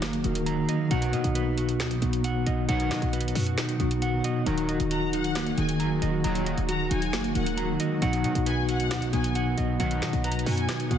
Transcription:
Already playing: tine electric piano D#3 D#4 F#4 G#4, ambient pad D#3 F#3 A#3 F5, clean electric guitar D#4 F#4 D#5 A#5
0.02 808-style bass F#1, clean electric guitar A#3, finger snap, snare, closed hi-hat
0.13 closed hi-hat
0.24 808-style bass D#1, tine electric piano D#3 D#4 F#4 A#4, clean electric guitar D#3, closed hi-hat
0.35 closed hi-hat
0.46 clean electric guitar A#5, closed hi-hat
0.69 clean electric guitar D#5, closed hi-hat
0.90 808-style bass B1, tine electric piano B2 B3 D#4 F#4, analog polysynth B2 D#3 F#3, ambient pad D#3 F#3 B3 F#4, clean electric guitar F#5, closed hi-hat
1.02 closed hi-hat
1.13 808-style bass B2, clean electric guitar D#5, closed hi-hat
1.24 808-style bass B1, closed hi-hat
1.35 clean electric guitar B4, closed hi-hat
1.58 clean electric guitar F#4, closed hi-hat
1.69 closed hi-hat
1.80 808-style bass D2, clean electric guitar D#4, finger snap, snare, closed hi-hat
1.91 808-style bass B1, closed hi-hat
2.01 808-style bass B1, tine electric piano B2 B3 D#4 F#4, clean electric guitar B3, closed hi-hat
2.13 closed hi-hat
2.24 clean electric guitar F#5, closed hi-hat
2.46 808-style bass B1, clean electric guitar D#5, closed hi-hat
2.69 808-style bass B1, analog polysynth B2 D#3 F#3, clean electric guitar F#5, closed hi-hat
2.80 closed hi-hat
2.91 808-style bass B2, clean electric guitar D#5, finger snap, snare, closed hi-hat
3.02 808-style bass B1, closed hi-hat
3.13 clean electric guitar B4, closed hi-hat
3.21 closed hi-hat
3.28 closed hi-hat
3.35 808-style bass F#2, clean electric guitar F#4, open hi-hat
3.46 closed hi-hat
3.57 clean electric guitar D#4, finger snap, snare, closed hi-hat
3.69 closed hi-hat
3.79 808-style bass B1, tine electric piano B2 B3 D#4 F#4, clean electric guitar B3, closed hi-hat
3.91 closed hi-hat
4.02 clean electric guitar F#5, closed hi-hat
4.24 clean electric guitar D#5, closed hi-hat
4.45 808-style bass D#1, analog polysynth A#2 D#3 F#3, tine electric piano D#3 D#4 F#4 A#4, clean electric guitar A#5, closed hi-hat
4.58 closed hi-hat
4.69 clean electric guitar D#5, closed hi-hat
4.80 808-style bass D#1, closed hi-hat
4.91 clean electric guitar F#4, violin section A#5, closed hi-hat
5.13 clean electric guitar D#4, violin section F#5, closed hi-hat
5.24 closed hi-hat
5.35 clean electric guitar A#3, finger snap, snare, closed hi-hat
5.47 closed hi-hat
5.57 808-style bass D#1, tine electric piano D#3 D#4 F#4 G#4, clean electric guitar D#3, violin section G#5, closed hi-hat
5.69 closed hi-hat
5.80 808-style bass F#1, clean electric guitar A#5, closed hi-hat
5.91 808-style bass D#1
6.02 808-style bass D#1, clean electric guitar D#5, closed hi-hat
6.24 808-style bass D#1, analog polysynth A#2 D#3 F#3, ambient pad G#3, clean electric guitar A#5, closed hi-hat
6.35 closed hi-hat
6.46 clean electric guitar D#5, closed hi-hat
6.58 808-style bass D#1, closed hi-hat
6.69 clean electric guitar F#4, violin section A#5, closed hi-hat
6.91 808-style bass D#1, clean electric guitar D#4, violin section G#5, closed hi-hat
7.02 closed hi-hat
7.13 808-style bass F#1, clean electric guitar A#3, finger snap, snare, closed hi-hat
7.24 closed hi-hat
7.35 808-style bass D#1, tine electric piano D#3 D#4 F#4 A#4, clean electric guitar D#3, violin section F#5, closed hi-hat
7.46 closed hi-hat
7.57 clean electric guitar A#5, closed hi-hat
7.80 clean electric guitar D#5, closed hi-hat
8.01 808-style bass B1, tine electric piano B2 B3 D#4 F#4, analog polysynth B2 D#3 F#3, ambient pad B3, clean electric guitar F#5, closed hi-hat
8.13 closed hi-hat
8.24 808-style bass B2, clean electric guitar D#5, closed hi-hat
8.35 808-style bass B1, closed hi-hat
8.46 clean electric guitar B4, violin section G#5, closed hi-hat
8.69 clean electric guitar F#4, violin section F#5, closed hi-hat
8.80 closed hi-hat
8.91 808-style bass D2, clean electric guitar D#4, finger snap, snare, closed hi-hat
9.02 808-style bass B1, closed hi-hat
9.13 808-style bass B1, tine electric piano B2 B3 D#4 F#4, clean electric guitar B3, violin section G#5, closed hi-hat
9.24 closed hi-hat
9.35 clean electric guitar F#5, closed hi-hat
9.58 808-style bass B1, clean electric guitar D#5, closed hi-hat
9.80 808-style bass B1, analog polysynth B2 D#3 F#3, ambient pad F#4, clean electric guitar F#5, closed hi-hat
9.91 closed hi-hat
10.02 808-style bass B2, clean electric guitar D#5, finger snap, snare, closed hi-hat
10.13 808-style bass B1, closed hi-hat
10.24 clean electric guitar B4, violin section A#5, closed hi-hat
10.32 closed hi-hat
10.39 closed hi-hat
10.46 808-style bass F#2, clean electric guitar F#4, violin section G#5, open hi-hat
10.58 closed hi-hat
10.69 clean electric guitar D#4, finger snap, snare, closed hi-hat
10.80 closed hi-hat
10.90 808-style bass B1, tine electric piano B2 B3 D#4 F#4, clean electric guitar B3, violin section F#5, closed hi-hat

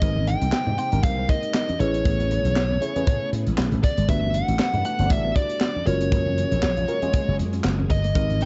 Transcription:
Already playing: string machine G#3 A#3, lead electric guitar D#5
0.01 slap bass G#1, string machine C3 G4, tine electric piano G#3 C4 D#4 G4 A#4, clean electric guitar C4, kick, closed hi-hat, muted conga
0.16 muted conga, high conga
0.27 clean electric guitar D4, lead electric guitar G5, closed hi-hat, high conga
0.41 slap bass C2, muted clean electric guitar stroke, closed hi-hat, high conga
0.52 muted slap bass stroke, snare, clap, muted conga
0.67 slap bass G#2, clean electric guitar D#4, high conga, low conga
0.78 tine electric piano G#3 C4 D#4 G4 C5, lead electric guitar G5, muted clean electric guitar stroke, closed hi-hat
0.92 slap bass G#1, tine electric piano G#3 C4 D#4 G4 A#4, clean electric guitar D4, closed hi-hat, high conga
1.03 slap bass C2, lead electric guitar F5, kick, closed hi-hat, low conga
1.18 clean electric guitar C4, muted conga
1.29 clean electric guitar D#4, lead electric guitar D#5, kick, closed hi-hat
1.43 closed hi-hat
1.54 lead electric guitar D#5, snare, clap, muted conga
1.69 clean electric guitar D4, closed hi-hat, muted conga, high conga
1.79 slap bass A1, string machine C#3 A3 B3 G#4, tine electric piano A3 C#4 E4 G#4 B4, lead electric guitar C#5, muted clean electric guitar stroke, closed hi-hat
1.94 clean electric guitar C#4, closed hi-hat
2.05 slap bass A1, clean electric guitar B3, kick, closed hi-hat, muted conga
2.20 closed hi-hat, muted conga, high conga
2.31 clean electric guitar A3, closed hi-hat, high conga
2.45 slap bass B1, muted clean electric guitar stroke, closed hi-hat, high conga
2.56 slap bass B1, snare, clap
2.71 clean electric guitar B3, high conga, low conga
2.81 tine electric piano A3 C#4 E4 G#4 C#5, muted clean electric guitar stroke, closed hi-hat
2.96 tine electric piano A3 C#4 E4 G#4 B4, clean electric guitar C#4, closed hi-hat, high conga
3.07 slap bass A2, clean electric guitar B3, kick, closed hi-hat, muted conga, low conga
3.33 slap bass A2, muted clean electric guitar stroke, closed hi-hat
3.47 slap bass A1, clean electric guitar G#3, closed hi-hat
3.58 slap bass B1, snare, clap, muted conga
3.72 slap bass A1, clean electric guitar A3, closed hi-hat, high conga
3.83 lead electric guitar D5, kick, closed hi-hat
3.97 slap bass G#1, clean electric guitar G#3, closed hi-hat
4.09 slap bass G1, string machine G3 A4, tine electric piano A3 D4 F#4 G4 B4, clean electric guitar B3, lead electric guitar E5, kick, closed hi-hat
4.23 muted conga, high conga
4.34 clean electric guitar D4, lead electric guitar F#5, closed hi-hat, high conga
4.48 slap bass A1, muted clean electric guitar stroke, closed hi-hat, high conga
4.59 muted slap bass stroke, snare, clap
4.73 slap bass G2, clean electric guitar E4, closed hi-hat, high conga, low conga
4.85 tine electric piano A3 D4 F#4 G4 B4, lead electric guitar F#5, muted clean electric guitar stroke, closed hi-hat
4.99 slap bass G1, tine electric piano A3 D4 F#4 G4 C5, clean electric guitar D4, closed hi-hat, high conga
5.06 tine electric piano D5, closed hi-hat
5.10 slap bass A1, lead electric guitar E5, kick, muted conga, low conga
5.25 clean electric guitar B3
5.36 clean electric guitar E4, lead electric guitar D5, kick, closed hi-hat
5.49 closed hi-hat
5.61 snare, clap, muted conga
5.76 clean electric guitar D4, high conga
5.87 slap bass F#1, string machine F#3 G#3 A#3 G#4, tine electric piano G#3 C#4 F4 F#4 A#4, lead electric guitar C#5, closed hi-hat
6.01 clean electric guitar C#4, closed hi-hat
6.12 slap bass F#1, clean electric guitar A#3, kick, closed hi-hat, muted conga
6.26 muted conga, high conga
6.37 clean electric guitar C#4, closed hi-hat, high conga
6.52 slap bass A#1, muted clean electric guitar stroke, closed hi-hat, high conga
6.63 slap bass A#1, snare, clap, muted conga
6.77 clean electric guitar F4, closed hi-hat, muted conga, high conga, low conga
6.88 tine electric piano G#3 C#4 F4 F#4 A#4, muted clean electric guitar stroke, closed hi-hat
7.02 tine electric piano G#3 C#4 F4 F#4 G#4, clean electric guitar C#4, closed hi-hat, high conga
7.13 clean electric guitar A#3, kick, closed hi-hat, muted conga, low conga
7.28 slap bass F#1, muted conga
7.39 slap bass F#2, muted clean electric guitar stroke, closed hi-hat
7.53 clean electric guitar C#4, closed hi-hat
7.64 slap bass F#1, snare, clap, muted conga
7.79 clean electric guitar C#4, muted conga, high conga
7.90 slap bass G1, lead electric guitar D#5, muted clean electric guitar stroke, kick, closed hi-hat
8.04 clean electric guitar A#3, closed hi-hat
8.15 slap bass G#1, string machine C3 A#3 G4, tine electric piano G#3 C4 D#4 G4 A#4, clean electric guitar C4, kick, closed hi-hat
8.30 closed hi-hat, muted conga, high conga
8.41 clean electric guitar D4, lead electric guitar G5, closed hi-hat, high conga

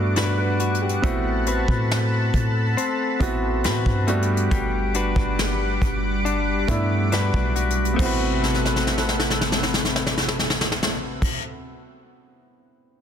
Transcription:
Already playing: 808-style bass G2, analog synth pad G3 F#5 B5 D6, clean electric guitar G3 D4 F#4 B4, grand piano A3 B3 D4 F#4
0.16 clean electric guitar D4 F#4 B4, grand piano D5, snare, closed hi-hat
0.38 grand piano B4
0.60 clean electric guitar F#4, closed hi-hat, open hi-hat
0.74 closed hi-hat
0.82 grand piano G4
0.89 closed hi-hat
1.02 808-style bass A1, clean electric guitar A3, grand piano B3 C4 E4 F#4, analog synth pad A4 A5 B5, kick, closed hi-hat
1.46 clean electric guitar C4 F#4 B4, closed hi-hat
1.68 808-style bass A2, kick
1.91 snare, closed hi-hat
2.34 808-style bass A2, kick, closed hi-hat
2.77 clean electric guitar C4, closed hi-hat
3.20 808-style bass A1, grand piano B3 C4 E4 F#4, kick, closed hi-hat
3.64 808-style bass A2, clean electric guitar C4 F#4 B4, snare, closed hi-hat
3.86 808-style bass G2, kick
4.07 clean electric guitar G3, analog synth pad G3 F#5 B5 D6, grand piano A3 B3 D4 F#4, closed hi-hat, open hi-hat
4.22 closed hi-hat
4.37 closed hi-hat
4.51 808-style bass G1, clean electric guitar G3, kick, closed hi-hat
4.94 clean electric guitar D4 F#4 B4, closed hi-hat
5.16 808-style bass G1, kick
5.39 snare, closed hi-hat
5.82 808-style bass G1, kick, closed hi-hat
6.25 clean electric guitar D4, closed hi-hat
6.68 808-style bass G2, grand piano A3 B3 D4 E4, kick, closed hi-hat
7.12 clean electric guitar D4 F#4 B4, snare, closed hi-hat
7.34 808-style bass B1, kick
7.56 clean electric guitar F#4, closed hi-hat, open hi-hat
7.70 closed hi-hat
7.85 closed hi-hat
7.94 clean electric guitar A3, grand piano B3 C4
7.99 808-style bass A1, analog synth pad C3 A4 B4 E5 F#5, clean electric guitar C4, grand piano E4, kick, crash
8.03 clean electric guitar F#4 B4, grand piano F#4
8.44 snare
8.54 snare
8.65 snare
8.76 snare
8.87 snare
8.98 snare
9.09 snare
9.20 snare
9.30 snare
9.41 snare
9.52 snare
9.63 snare
9.74 snare
9.85 snare
9.96 snare
10.07 snare
10.18 snare
10.28 snare
10.39 snare
10.50 snare
10.61 snare
10.72 snare
10.83 snare
11.22 kick, crash

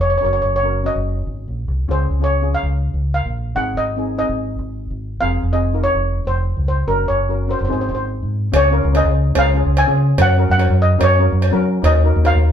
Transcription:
Already playing: fingered electric bass F1
0.01 steel pan C#5
0.10 steel pan C#5
0.18 steel pan C#4 C#5
0.22 fingered electric bass F#1, steel pan F#4 A#4 C#5
0.33 steel pan C#5
0.42 fingered electric bass F#1, steel pan C#5
0.56 steel pan C#5
0.63 steel pan C#4 F#4 A#4
0.84 steel pan C#4 F#4 C#5 D#5
0.95 fingered electric bass F#1
1.27 fingered electric bass G#1
1.48 fingered electric bass A#1
1.68 fingered electric bass C2
1.88 fingered electric bass C#2, steel pan C#4 F4 G#4 C5
2.11 fingered electric bass C#2
2.20 steel pan C#4 F4 G#4 C#5
2.42 steel pan C#4 F4 G#4
2.54 steel pan F5
2.63 fingered electric bass C#2
2.94 fingered electric bass C#2
3.14 steel pan F5
3.25 fingered electric bass A#1
3.55 fingered electric bass G#1, steel pan C4 D#4 G#4 F#5
3.76 fingered electric bass G#1, steel pan D#5
3.96 steel pan C4 D#4 G#4
4.18 steel pan C4 D#4 G#4 D#5
4.29 fingered electric bass G#1
4.58 fingered electric bass G#1
4.90 fingered electric bass G#1
5.20 fingered electric bass F1, steel pan C4 F4 G#4 F5
5.42 fingered electric bass F1
5.52 steel pan C4 F4 G#4 D#5
5.73 steel pan D#4 F4 A#4
5.84 steel pan C#5
5.94 fingered electric bass F1
6.25 fingered electric bass F1, steel pan C5
6.57 fingered electric bass C#2
6.68 steel pan C5
6.87 fingered electric bass F#1, steel pan C#4 F#4 A#4
7.08 fingered electric bass F#1, steel pan C#5
7.29 steel pan C#4 F#4 A#4
7.47 steel pan C#4 F#4 A#4 C5
7.59 fingered electric bass F#1, steel pan C5
7.65 steel pan C4 D#4 C5
7.70 fingered electric bass G#1, steel pan G#4 C5
7.81 steel pan C5
7.89 fingered electric bass G#1, steel pan C5
7.95 steel pan C5
8.23 fingered electric bass G#2
8.52 fingered electric bass C#2, steel pan C#4 F4 G#4, cowbell
8.56 steel pan C#5
8.71 steel pan C#4 F4 A#4
8.84 fingered electric bass C#2
8.93 steel pan C#4 F4 G#4 D#5, cowbell
9.05 fingered electric bass C#2
9.35 fingered electric bass C#2, steel pan C#4 F4 G#4 F5, cowbell
9.55 steel pan C#4 F4 G#4
9.66 fingered electric bass C#2
9.77 steel pan G#5, cowbell
9.87 fingered electric bass C#3, steel pan C#4 F4 G#4
10.18 fingered electric bass F#2, steel pan C#4 F#4 A#4 F#5, cowbell
10.37 steel pan C#4 F#4 A#4
10.50 fingered electric bass F#2, steel pan F#5
10.58 steel pan C#4 F#4 A#4, cowbell
10.70 fingered electric bass F#2
10.82 steel pan D#5
10.98 fingered electric bass F#2, steel pan C#4 F#4 A#4, cowbell
11.03 steel pan C#5
11.19 steel pan C#4 F#4 A#4
11.32 fingered electric bass F#2
11.42 cowbell
11.52 fingered electric bass F#3, steel pan C#4 F#4 A#4
11.82 fingered electric bass D#2, steel pan D#4 F#4 A#4 D#5, cowbell
12.04 steel pan D#4 F#4 A#4
12.16 fingered electric bass D#2
12.24 steel pan D#4 F#4 A#4 F5, cowbell
12.35 fingered electric bass D#2

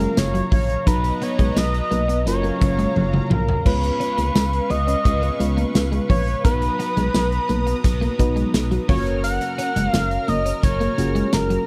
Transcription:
Already playing: overdriven electric guitar F#2 C#3 F#3, fm electric piano F#3 A#3 C#4 F4 A#4, analog synth pad F#3 F5 A#5, analog synth lead A#4
0.00 closed hi-hat
0.17 fm bass F#1, analog synth lead C#5, muted clean electric guitar stroke, snare, closed hi-hat, tambourine
0.34 clean electric guitar F#3, closed hi-hat
0.52 fm bass A#1, clean electric guitar F3, analog synth lead C#5, kick, open hi-hat
0.70 closed hi-hat
0.86 fm bass B1, overdriven electric guitar B2 F#3 B3, fm electric piano F#3 B3 D#4 A#5, analog synth pad B4 D#5 A#5, analog synth lead B4, kick, closed hi-hat
1.04 muted clean electric guitar stroke, closed hi-hat
1.21 overdriven electric guitar F#3 B3, clean electric guitar B3, analog synth lead C#5, closed hi-hat
1.39 fm bass B1, clean electric guitar G#3, kick, closed hi-hat
1.56 fm bass B1, analog synth lead D#5, muted clean electric guitar stroke, snare, closed hi-hat, tambourine
1.74 closed hi-hat
1.91 fm bass B1, clean electric guitar A#3, closed hi-hat
2.08 clean electric guitar B3, closed hi-hat
2.26 fm bass F#1, overdriven electric guitar F#2 C#3, fm electric piano F#3 A#3 C#4 F4 A#4, analog synth pad F#3 F5 A#5, analog synth lead C#5, closed hi-hat
2.31 overdriven electric guitar F#3
2.43 clean electric guitar A#3, closed hi-hat
2.60 fm bass F#1, fm electric piano F#3 A#3 C#4 F4 C#5, muted clean electric guitar stroke, kick, closed hi-hat
2.79 clean electric guitar G#3, closed hi-hat
2.96 fm bass F#1, muted clean electric guitar stroke, high tom
3.13 clean electric guitar F#3, mid tom
3.30 fm bass B1, clean electric guitar F3, analog synth lead A#4, mid tom
3.49 floor tom
3.65 fm bass C#2, overdriven electric guitar C#3 G#3 C#4, fm electric piano G#3 B3 C#4 F4 B4, analog synth pad B4 F5 C#6, analog synth lead B4, kick, crash
3.83 muted clean electric guitar stroke, closed hi-hat
4.00 overdriven electric guitar G#3 C#4, clean electric guitar C#4, closed hi-hat
4.18 fm bass C#2, clean electric guitar A#3, closed hi-hat
4.35 fm bass C#2, muted clean electric guitar stroke, snare, closed hi-hat, tambourine
4.53 closed hi-hat
4.70 fm bass C#2, clean electric guitar B3, analog synth lead D#5, closed hi-hat
4.87 clean electric guitar C#4, closed hi-hat
5.04 fm bass C#2, overdriven electric guitar C#3 G#3, kick, closed hi-hat
5.09 overdriven electric guitar C#4
5.22 clean electric guitar B3, closed hi-hat
5.40 fm bass C#2, fm electric piano G#3 B3 C#4 F4 B4, muted clean electric guitar stroke, closed hi-hat
5.57 clean electric guitar A#3, closed hi-hat
5.75 fm bass C#2, muted clean electric guitar stroke, snare, closed hi-hat, tambourine
5.92 clean electric guitar G#3, closed hi-hat
6.09 fm bass A#1, clean electric guitar F3, analog synth lead C#5, kick, open hi-hat
6.27 closed hi-hat
6.44 fm bass B1, overdriven electric guitar B2 F#3 B3, fm electric piano F#3 B3 D#4 F#4 B4, analog synth lead B4, analog synth pad A#5 D#6, kick, closed hi-hat
6.62 muted clean electric guitar stroke, closed hi-hat
6.79 overdriven electric guitar F#3 B3, clean electric guitar B3, closed hi-hat
6.97 fm bass B1, clean electric guitar G#3, closed hi-hat
7.14 fm bass B1, muted clean electric guitar stroke, snare, closed hi-hat, tambourine
7.32 closed hi-hat
7.49 fm bass B1, clean electric guitar A#3, closed hi-hat
7.67 clean electric guitar B3, closed hi-hat
7.84 fm bass B1, overdriven electric guitar B2 F#3 B3, kick, closed hi-hat
8.01 clean electric guitar A#3, closed hi-hat
8.19 fm bass B1, fm electric piano F#3 B3 D#4 F#4 B4, muted clean electric guitar stroke, kick, closed hi-hat
8.36 clean electric guitar G#3, closed hi-hat
8.54 fm bass B1, muted clean electric guitar stroke, snare, closed hi-hat, tambourine
8.71 clean electric guitar F#3, closed hi-hat
8.88 fm bass F#1, overdriven electric guitar F#2 C#3 F#3, clean electric guitar F3, fm electric piano A#3 C#4 F#4 C#5, analog synth pad A#4 A#5 F6, analog synth lead C#5, kick, open hi-hat
9.07 closed hi-hat
9.24 analog synth lead F#5, closed hi-hat
9.41 muted clean electric guitar stroke, closed hi-hat
9.58 overdriven electric guitar C#3 F#3, clean electric guitar C#4, closed hi-hat
9.76 fm bass F#1, clean electric guitar G#3, closed hi-hat
9.91 fm bass F#1, analog synth lead F5, muted clean electric guitar stroke, snare, closed hi-hat, tambourine
10.11 closed hi-hat
10.28 fm bass F#1, clean electric guitar A#3, analog synth lead D#5, closed hi-hat
10.46 clean electric guitar C#4, closed hi-hat
10.62 fm bass F#1, overdriven electric guitar F#2 C#3, analog synth lead C#5, kick, closed hi-hat
10.67 overdriven electric guitar F#3
10.80 clean electric guitar A#3, closed hi-hat
10.98 fm bass F#1, fm electric piano A#3 C#4 F4 F#4 G#4, muted clean electric guitar stroke, closed hi-hat
11.15 clean electric guitar G#3, closed hi-hat
11.33 fm bass F#1, analog synth lead A#4, muted clean electric guitar stroke, snare, closed hi-hat, tambourine
11.50 clean electric guitar F#3, closed hi-hat

